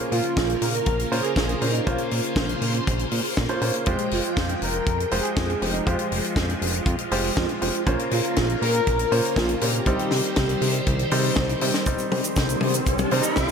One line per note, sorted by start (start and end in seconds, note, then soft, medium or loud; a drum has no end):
0.00 3.83 C#3 medium
0.00 1.09 A#3 medium
0.00 3.83 A#3 medium
0.00 1.09 C#4 medium
0.00 1.09 F4 medium
0.00 3.83 F4 medium
0.00 1.85 A#4 medium
0.00 1.09 C5 loud
0.12 0.21 A#2 medium
0.12 0.63 F4 loud
0.12 open hi-hat medium
0.24 closed hi-hat medium
0.37 0.56 A#1 medium
0.37 kick loud
0.37 snare loud
0.37 closed hi-hat medium
0.50 closed hi-hat medium
0.62 0.81 A#2 medium
0.62 1.22 A#4 loud
0.62 open hi-hat loud
0.74 closed hi-hat medium
0.86 1.06 A#1 medium
0.86 kick loud
0.86 closed hi-hat medium
0.99 closed hi-hat medium
1.12 1.21 A#2 medium
1.12 1.59 A#3 loud
1.12 1.59 C#4 medium
1.12 1.59 F4 medium
1.12 1.59 C5 loud
1.12 open hi-hat medium
1.20 1.36 G#4 loud
1.24 closed hi-hat medium
1.36 1.56 A#1 loud
1.36 1.68 G#4 loud
1.36 kick loud
1.36 snare loud
1.36 closed hi-hat medium
1.49 closed hi-hat medium
1.61 1.81 A#2 medium
1.61 1.84 A#3 medium
1.61 1.84 C#4 medium
1.61 1.84 F4 medium
1.61 1.84 C5 medium
1.61 open hi-hat loud
1.70 1.87 D#4 medium
1.75 closed hi-hat soft
1.87 1.96 A#1 loud
1.87 3.09 A#3 medium
1.87 3.09 C#4 medium
1.87 3.09 F4 medium
1.87 2.33 F4 medium
1.87 3.09 C5 loud
1.87 3.85 C5 medium
1.87 kick loud
1.87 closed hi-hat medium
1.98 closed hi-hat medium
2.11 2.21 A#2 medium
2.11 open hi-hat medium
2.24 closed hi-hat medium
2.36 2.56 A#1 medium
2.36 kick loud
2.36 snare loud
2.36 closed hi-hat medium
2.49 closed hi-hat medium
2.62 2.81 A#2 medium
2.62 open hi-hat medium
2.74 closed hi-hat soft
2.87 3.06 A#1 medium
2.87 kick loud
2.87 closed hi-hat loud
2.99 closed hi-hat soft
3.11 3.21 A#2 medium
3.11 open hi-hat loud
3.25 open hi-hat medium
3.37 3.47 A#1 loud
3.37 kick loud
3.37 snare loud
3.49 3.59 A#3 medium
3.49 3.59 C#4 medium
3.49 3.59 F4 medium
3.49 3.59 C5 loud
3.49 closed hi-hat medium
3.61 3.71 A#2 medium
3.61 3.84 A#3 medium
3.61 3.84 C#4 medium
3.61 3.84 F4 medium
3.61 3.84 C5 loud
3.61 open hi-hat loud
3.74 closed hi-hat medium
3.86 3.96 F2 loud
3.86 7.83 F3 medium
3.86 7.83 G#3 medium
3.86 5.09 G#3 medium
3.86 5.09 F4 medium
3.86 5.09 G4 medium
3.86 5.09 C5 loud
3.86 5.85 G5 medium
3.86 kick loud
3.86 closed hi-hat medium
3.98 closed hi-hat medium
4.11 4.21 F1 medium
4.11 4.63 F4 loud
4.11 open hi-hat loud
4.24 closed hi-hat soft
4.37 4.56 F2 medium
4.37 kick loud
4.37 snare loud
4.37 closed hi-hat medium
4.49 closed hi-hat medium
4.62 4.81 F1 medium
4.62 5.22 A#4 loud
4.62 open hi-hat loud
4.73 closed hi-hat medium
4.87 5.06 F2 medium
4.87 kick loud
4.87 closed hi-hat loud
5.00 closed hi-hat soft
5.11 5.21 F1 medium
5.11 5.59 G#3 medium
5.11 5.59 F4 medium
5.11 5.59 G4 medium
5.11 5.59 C5 loud
5.11 open hi-hat loud
5.20 5.36 G#4 loud
5.25 closed hi-hat medium
5.36 5.56 F2 loud
5.36 5.71 G#4 loud
5.36 kick loud
5.36 snare loud
5.36 closed hi-hat medium
5.50 closed hi-hat soft
5.62 5.81 F1 medium
5.62 5.84 G#3 medium
5.62 5.84 F4 medium
5.62 5.84 G4 medium
5.62 5.84 C5 medium
5.62 open hi-hat loud
5.70 5.87 D#4 medium
5.74 closed hi-hat soft
5.87 5.96 F2 loud
5.87 7.09 G#3 medium
5.87 9.83 F4 medium
5.87 7.09 F4 medium
5.87 6.33 F4 medium
5.87 7.09 G4 medium
5.87 7.09 C5 loud
5.87 kick loud
5.87 closed hi-hat medium
5.99 closed hi-hat medium
6.12 6.21 F1 medium
6.12 open hi-hat loud
6.24 closed hi-hat medium
6.36 6.56 F2 medium
6.36 kick loud
6.36 snare loud
6.36 closed hi-hat medium
6.50 closed hi-hat medium
6.62 6.81 F1 medium
6.62 open hi-hat loud
6.74 closed hi-hat soft
6.86 6.96 F2 loud
6.86 kick loud
6.86 closed hi-hat medium
6.98 closed hi-hat medium
7.11 7.31 F1 medium
7.11 7.59 G#3 loud
7.11 7.59 F4 medium
7.11 7.59 G4 medium
7.11 7.59 C5 loud
7.11 open hi-hat loud
7.24 open hi-hat medium
7.37 7.46 F2 loud
7.37 kick loud
7.37 snare loud
7.49 closed hi-hat medium
7.62 7.71 F1 medium
7.62 7.84 G#3 medium
7.62 7.84 F4 medium
7.62 7.84 G4 medium
7.62 7.84 C5 medium
7.62 open hi-hat loud
7.75 closed hi-hat soft
7.86 7.96 A#1 loud
7.86 9.85 C#3 medium
7.86 9.85 A#3 medium
7.86 9.09 A#3 medium
7.86 9.09 C#4 medium
7.86 9.09 F4 medium
7.86 9.85 A#4 medium
7.86 9.09 C5 loud
7.86 kick loud
7.86 closed hi-hat medium
7.99 closed hi-hat medium
8.11 8.21 A#2 medium
8.11 8.63 F4 loud
8.11 open hi-hat loud
8.24 closed hi-hat medium
8.36 8.56 A#1 medium
8.36 kick loud
8.36 snare loud
8.36 closed hi-hat loud
8.49 closed hi-hat medium
8.62 8.81 A#2 medium
8.62 9.39 A#4 loud
8.62 open hi-hat loud
8.74 closed hi-hat medium
8.87 9.06 A#1 medium
8.87 kick loud
8.87 closed hi-hat loud
8.99 closed hi-hat medium
9.12 9.21 A#2 medium
9.12 9.59 A#3 medium
9.12 9.59 C#4 medium
9.12 9.59 F4 medium
9.12 9.59 C5 loud
9.12 open hi-hat loud
9.25 closed hi-hat medium
9.36 9.56 A#1 loud
9.36 9.60 F4 loud
9.36 kick loud
9.36 snare loud
9.36 closed hi-hat medium
9.49 closed hi-hat medium
9.61 9.81 A#2 medium
9.61 9.84 A#3 medium
9.61 9.84 C#4 medium
9.61 9.84 F4 medium
9.61 11.33 G4 loud
9.61 9.84 C5 medium
9.61 open hi-hat loud
9.74 closed hi-hat medium
9.86 9.96 C2 loud
9.86 11.85 D#3 medium
9.86 11.85 G3 medium
9.86 11.09 G3 medium
9.86 11.09 C4 medium
9.86 11.09 D#4 medium
9.86 11.85 G4 medium
9.86 11.85 C5 medium
9.86 11.09 C5 loud
9.86 kick loud
9.86 closed hi-hat loud
9.99 closed hi-hat medium
10.11 10.21 C3 medium
10.11 snare medium
10.11 open hi-hat loud
10.24 closed hi-hat medium
10.36 10.56 C2 medium
10.36 kick loud
10.36 snare loud
10.36 closed hi-hat medium
10.49 closed hi-hat medium
10.62 10.81 C3 medium
10.62 open hi-hat loud
10.74 closed hi-hat medium
10.86 11.06 C2 medium
10.86 kick loud
10.86 closed hi-hat loud
10.99 closed hi-hat medium
11.11 11.31 C3 loud
11.11 11.59 G3 medium
11.11 11.59 C4 medium
11.11 11.59 D#4 medium
11.11 11.59 C5 loud
11.11 open hi-hat loud
11.24 open hi-hat medium
11.36 11.56 C2 medium
11.36 kick loud
11.36 snare loud
11.36 closed hi-hat loud
11.49 closed hi-hat medium
11.61 11.71 C3 loud
11.61 11.84 G3 medium
11.61 11.84 C4 medium
11.61 11.84 D#4 medium
11.61 11.84 C5 medium
11.61 open hi-hat loud
11.74 snare medium
11.74 closed hi-hat medium
11.86 11.96 C2 loud
11.86 13.51 D#3 medium
11.86 13.09 G3 medium
11.86 13.51 G3 medium
11.86 13.09 C4 medium
11.86 13.51 C4 medium
11.86 13.09 D#4 medium
11.86 13.51 G4 medium
11.86 13.09 C5 loud
11.86 13.51 C5 medium
11.86 kick loud
11.86 closed hi-hat loud
11.86 riser medium
11.86 cabasa medium
11.99 closed hi-hat medium
11.99 cabasa soft
12.12 12.21 C3 medium
12.12 open hi-hat medium
12.12 high tom medium
12.24 closed hi-hat medium
12.24 cabasa medium
12.36 12.56 C2 medium
12.36 kick loud
12.36 snare loud
12.36 closed hi-hat medium
12.36 cabasa medium
12.49 closed hi-hat medium
12.49 cabasa soft
12.61 12.81 C3 medium
12.61 open hi-hat loud
12.61 high tom medium
12.74 closed hi-hat medium
12.74 cabasa medium
12.87 13.06 C2 medium
12.87 kick loud
12.87 closed hi-hat loud
12.87 cabasa medium
12.99 closed hi-hat medium
12.99 high tom medium
12.99 cabasa soft
13.11 13.21 C3 medium
13.11 13.51 G3 loud
13.11 13.51 C4 medium
13.11 13.51 D#4 medium
13.11 13.51 C5 loud
13.11 open hi-hat loud
13.24 closed hi-hat medium
13.24 cabasa medium
13.36 13.51 C2 loud
13.36 kick loud
13.36 snare loud
13.36 closed hi-hat medium
13.36 cabasa medium